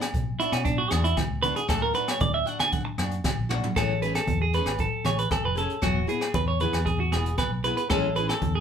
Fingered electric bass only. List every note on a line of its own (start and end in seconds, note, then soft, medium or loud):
0.13 0.34 B1 medium
0.52 0.83 B2 medium
0.91 1.12 E2 medium
1.30 1.51 C#2 medium
1.69 1.90 D2 loud
2.20 2.41 D2 medium
2.60 2.91 D3 medium
2.98 3.19 F#2 medium
3.38 3.58 A#1 medium
3.77 4.17 A1 medium
4.27 4.59 E2 medium
4.65 4.86 G#1 medium
5.04 5.25 A1 medium
5.44 5.64 F1 medium
5.82 6.03 E1 medium
6.34 6.65 E2 medium
6.73 7.13 E2 medium
7.12 7.33 E1 medium
7.51 7.72 B1 medium
7.90 8.31 A1 loud
8.42 8.60 E2 medium